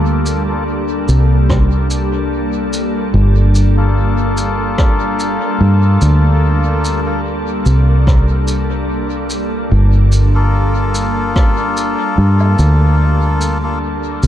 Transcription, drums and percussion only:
0.26 shaker
1.09 shaker
1.50 kick, cross-stick
1.91 shaker
2.73 shaker
3.55 shaker
4.38 shaker
4.78 kick, cross-stick
5.20 shaker
6.02 shaker
6.85 shaker
7.66 shaker
8.07 kick, cross-stick
8.48 shaker
9.30 shaker
10.12 shaker
10.95 shaker
11.36 kick, cross-stick
11.77 shaker
12.40 low woodblock
12.59 shaker
13.41 shaker
14.23 shaker

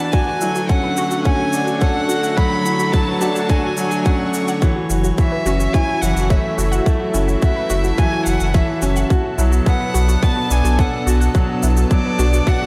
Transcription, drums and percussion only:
0.13 kick, shaker
0.41 shaker
0.55 shaker
0.69 kick, shaker
0.97 shaker
1.11 shaker
1.25 kick, shaker
1.53 shaker
1.67 shaker
1.81 kick, shaker
2.09 shaker
2.24 shaker
2.38 kick, shaker
2.66 shaker
2.80 shaker
2.94 kick, shaker
3.21 shaker
3.36 shaker
3.49 kick, shaker
3.77 shaker
3.91 shaker
4.06 kick, shaker
4.34 shaker
4.48 shaker
4.62 kick, shaker
4.90 shaker
5.04 shaker
5.18 kick, shaker
5.46 shaker
5.60 shaker
5.74 kick, shaker
6.03 shaker
6.17 shaker
6.30 kick, shaker
6.59 shaker
6.73 shaker
6.86 kick, shaker
7.14 shaker
7.29 shaker
7.42 kick, shaker
7.70 shaker
7.84 shaker
7.98 kick, shaker
8.26 shaker
8.40 shaker
8.54 kick, shaker
8.82 shaker
8.96 shaker
9.10 kick, shaker
9.39 shaker
9.53 shaker
9.66 kick, shaker
9.95 shaker
10.09 shaker
10.23 kick, shaker
10.51 shaker
10.65 shaker
10.79 kick, shaker
11.08 shaker
11.21 shaker
11.35 kick, shaker
11.63 shaker
11.77 shaker
11.91 kick, shaker
12.19 shaker
12.33 shaker
12.47 kick, shaker

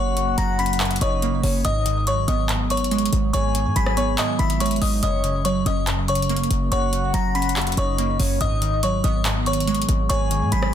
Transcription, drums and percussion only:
0.17 closed hi-hat
0.38 closed hi-hat
0.59 closed hi-hat
0.66 closed hi-hat
0.73 closed hi-hat
0.80 clap, closed hi-hat
0.85 closed hi-hat
0.91 closed hi-hat
0.96 closed hi-hat
1.01 closed hi-hat
1.22 closed hi-hat
1.43 open hi-hat
1.65 closed hi-hat
1.86 closed hi-hat
2.07 closed hi-hat
2.28 closed hi-hat
2.49 clap, closed hi-hat
2.70 closed hi-hat
2.77 closed hi-hat
2.84 closed hi-hat
2.91 closed hi-hat
2.98 closed hi-hat
3.06 closed hi-hat
3.13 closed hi-hat
3.34 closed hi-hat
3.55 closed hi-hat
3.76 closed hi-hat
3.86 cross-stick
3.97 closed hi-hat
4.18 clap, closed hi-hat
4.39 closed hi-hat
4.50 closed hi-hat
4.60 closed hi-hat
4.66 closed hi-hat
4.71 closed hi-hat
4.76 closed hi-hat
4.82 open hi-hat
5.03 closed hi-hat
5.24 closed hi-hat
5.45 closed hi-hat
5.66 closed hi-hat
5.87 clap, closed hi-hat
6.08 closed hi-hat
6.15 closed hi-hat
6.22 closed hi-hat
6.29 closed hi-hat
6.36 closed hi-hat
6.44 closed hi-hat
6.51 closed hi-hat
6.72 closed hi-hat
6.93 closed hi-hat
7.14 closed hi-hat
7.35 closed hi-hat
7.42 closed hi-hat
7.49 closed hi-hat
7.56 clap, closed hi-hat
7.62 closed hi-hat
7.67 closed hi-hat
7.72 closed hi-hat
7.77 closed hi-hat
7.98 closed hi-hat
8.20 open hi-hat
8.41 closed hi-hat
8.62 closed hi-hat
8.83 closed hi-hat
9.04 closed hi-hat
9.25 clap, closed hi-hat
9.46 closed hi-hat
9.53 closed hi-hat
9.60 closed hi-hat
9.67 closed hi-hat
9.74 closed hi-hat
9.82 closed hi-hat
9.89 closed hi-hat
10.10 closed hi-hat
10.31 closed hi-hat
10.52 closed hi-hat
10.62 cross-stick

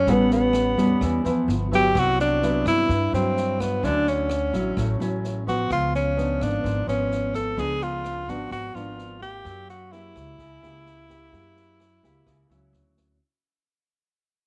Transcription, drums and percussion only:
0.07 kick, snare
0.30 snare
0.53 cross-stick, snare
0.77 kick, snare
1.01 kick, cross-stick, snare
1.25 snare
1.49 snare
1.72 kick, snare
1.95 kick, cross-stick, snare
2.19 snare
2.42 snare
2.66 kick, cross-stick, snare
2.89 kick, snare
3.13 snare
3.37 snare
3.60 kick, cross-stick, snare
3.83 kick, snare
4.07 snare
4.29 cross-stick, snare
4.53 kick, snare
4.77 kick, cross-stick, snare
5.00 snare
5.24 snare
5.47 kick, snare
5.70 kick, cross-stick, snare
5.94 snare
6.18 snare
6.41 kick, cross-stick, snare
6.64 kick, snare
6.88 snare
7.11 snare
7.34 kick, cross-stick, snare
7.57 kick, snare
7.81 snare
8.04 cross-stick, snare
8.28 kick, snare
8.51 kick, cross-stick, snare
8.75 snare
8.98 snare
9.21 kick, snare
9.45 kick, cross-stick, snare
9.68 snare
9.92 snare
10.15 kick, cross-stick, snare
10.39 kick, snare
10.63 snare
10.86 snare
11.09 kick, cross-stick, snare
11.33 kick, snare
11.56 snare
11.80 cross-stick, snare
12.03 kick, snare
12.27 kick, cross-stick, snare
12.50 snare
12.73 snare
12.97 kick, snare

